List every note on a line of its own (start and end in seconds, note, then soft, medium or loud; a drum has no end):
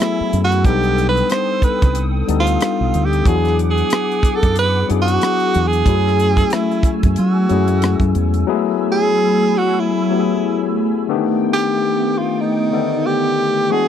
0.00 0.66 F#3 medium
0.00 0.62 A3 medium
0.00 0.66 A3 medium
0.00 0.65 B3 medium
0.00 0.39 E4 loud
0.00 0.66 E4 medium
0.00 0.46 G#4 medium
0.00 0.61 G#5 medium
0.00 0.66 G#5 medium
0.00 0.61 B5 medium
0.00 0.62 E6 medium
0.00 cross-stick medium
0.00 closed hi-hat medium
0.21 muted fingered electric bass stroke soft
0.33 0.67 F#2 medium
0.33 closed hi-hat medium
0.44 0.67 F#4 medium
0.52 closed hi-hat soft
0.63 1.21 B1 medium
0.63 1.66 G3 medium
0.63 1.67 B3 medium
0.63 1.67 D4 medium
0.63 1.67 D#4 medium
0.63 1.08 G4 medium
0.63 3.22 A4 medium
0.63 1.68 A4 medium
0.63 3.22 G5 medium
0.63 3.22 D#6 medium
0.63 kick loud
0.63 closed hi-hat medium
0.83 closed hi-hat soft
0.98 closed hi-hat medium
1.09 1.32 B4 medium
1.17 closed hi-hat soft
1.30 1.65 C5 medium
1.30 cross-stick medium
1.30 closed hi-hat medium
1.62 2.02 B4 medium
1.62 muted fingered electric bass stroke soft
1.62 kick medium
1.62 closed hi-hat medium
1.82 2.22 C2 medium
1.82 kick medium
1.82 closed hi-hat medium
1.95 closed hi-hat medium
2.28 2.56 D2 medium
2.28 3.05 G3 medium
2.28 3.06 B3 medium
2.28 3.06 D4 medium
2.28 3.06 D#4 medium
2.28 3.07 A4 medium
2.28 closed hi-hat medium
2.40 3.07 F4 medium
2.47 closed hi-hat medium
2.61 cross-stick loud
2.61 closed hi-hat medium
2.81 2.91 B1 medium
2.94 3.22 D2 medium
2.94 closed hi-hat medium
3.05 3.28 G4 medium
3.13 closed hi-hat soft
3.25 3.82 E2 loud
3.25 4.28 F#3 medium
3.25 4.28 B3 medium
3.25 4.28 D4 medium
3.25 4.28 E4 medium
3.25 3.35 F#4 medium
3.25 5.83 G#4 medium
3.25 3.59 G#4 loud
3.25 5.84 F#5 medium
3.25 5.83 D6 medium
3.25 kick loud
3.25 closed hi-hat medium
3.35 4.32 G#4 medium
3.45 cross-stick soft
3.45 closed hi-hat soft
3.59 closed hi-hat medium
3.71 4.37 G#4 medium
3.78 closed hi-hat soft
3.90 cross-stick loud
3.90 closed hi-hat medium
4.12 closed hi-hat soft
4.23 muted fingered electric bass stroke soft
4.23 kick loud
4.23 closed hi-hat medium
4.36 4.57 A4 medium
4.43 4.83 F#2 medium
4.43 kick medium
4.43 closed hi-hat soft
4.56 4.88 B4 loud
4.56 closed hi-hat medium
4.88 5.17 F#2 medium
4.88 5.66 F#3 medium
4.88 5.66 B3 medium
4.88 5.67 D4 medium
4.88 5.67 E4 medium
4.88 5.67 G#4 medium
4.88 closed hi-hat medium
5.02 5.69 F#4 loud
5.08 closed hi-hat medium
5.21 cross-stick medium
5.21 closed hi-hat medium
5.40 closed hi-hat soft
5.54 5.83 E2 medium
5.54 closed hi-hat medium
5.67 6.55 G#4 loud
5.73 closed hi-hat soft
5.85 6.42 F#2 medium
5.85 6.88 F#3 medium
5.85 8.44 A3 medium
5.85 6.88 A3 medium
5.85 6.89 C#4 medium
5.85 6.89 E4 medium
5.85 5.95 F#4 medium
5.85 8.44 G#5 medium
5.85 8.44 E6 medium
5.85 kick medium
5.85 closed hi-hat medium
5.95 6.93 G#4 medium
6.08 cross-stick soft
6.20 closed hi-hat medium
6.37 kick medium
6.37 cross-stick soft
6.37 closed hi-hat soft
6.50 6.91 E4 medium
6.50 cross-stick loud
6.50 closed hi-hat medium
6.72 closed hi-hat soft
6.83 muted fingered electric bass stroke soft
6.83 kick medium
6.83 closed hi-hat medium
7.03 7.16 F#2 medium
7.03 kick medium
7.03 closed hi-hat medium
7.16 7.46 F#3 medium
7.16 8.11 F#4 medium
7.16 closed hi-hat medium
7.49 7.94 F#2 medium
7.49 8.27 F#3 medium
7.49 7.57 G#3 soft
7.49 8.28 C#4 medium
7.49 8.28 E4 medium
7.49 8.29 G#4 medium
7.49 closed hi-hat medium
7.57 8.31 A3 medium
7.68 closed hi-hat medium
7.82 cross-stick medium
7.82 closed hi-hat medium
8.00 8.12 F#2 medium
8.00 kick medium
8.00 closed hi-hat soft
8.15 8.43 E2 medium
8.15 closed hi-hat medium
8.34 closed hi-hat soft
8.46 11.05 F#3 medium
8.46 9.49 F#3 medium
8.46 8.55 G#3 medium
8.46 13.64 A3 medium
8.46 9.50 B3 medium
8.46 9.50 E4 medium
8.46 9.50 G#4 medium
8.46 11.05 G#5 medium
8.46 11.05 B5 medium
8.46 11.05 E6 medium
8.54 9.53 A3 medium
8.92 9.59 G#4 loud
9.58 9.81 F#4 loud
9.79 10.76 E4 medium
10.10 10.88 F#3 medium
10.10 10.88 A3 medium
10.10 10.89 B3 medium
10.10 10.89 E4 medium
10.10 10.19 G4 medium
10.19 10.92 G#4 medium
11.07 11.16 D3 medium
11.07 12.10 A3 medium
11.07 13.66 B3 medium
11.07 12.11 B3 medium
11.07 12.11 D4 medium
11.07 12.11 G4 medium
11.07 13.66 G5 medium
11.15 12.13 D#3 medium
11.53 12.20 G4 medium
12.18 12.42 F4 medium
12.40 13.08 D#4 medium
12.71 12.79 D3 soft
12.71 13.49 A3 medium
12.71 13.50 B3 medium
12.71 13.50 A4 medium
12.71 13.50 D5 medium
12.78 13.52 D#3 medium
13.06 13.73 G4 loud
13.68 13.88 E3 medium
13.68 13.88 G#3 medium
13.68 13.88 B3 medium
13.68 13.88 D4 medium
13.68 13.88 G#4 medium
13.68 13.88 G#4 loud
13.68 13.88 F#5 medium
13.68 13.88 D6 medium
13.73 13.88 F#4 medium